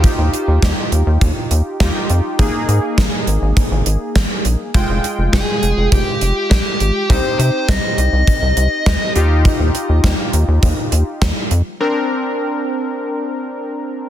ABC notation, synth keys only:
X:1
M:4/4
L:1/8
Q:1/4=102
K:Eb
V:1 name="Synth keys"
[EFG]6 [EFG]2 | [B,EA]8 | [A,Fg]8 | [CEG]6- [CEG] [EFG]- |
[EFG]6- [EFG] z | [CDB]8 |]